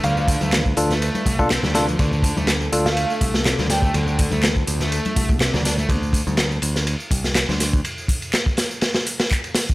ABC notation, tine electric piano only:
X:1
M:4/4
L:1/16
Q:"Swing 16ths" 1/4=123
K:Ddor
V:1 name="Tine electric piano"
z6 [DFA] z4 [DFA] z2 [DFA] z | z6 [DFA] z8 z | z16 | z16 |
z16 |]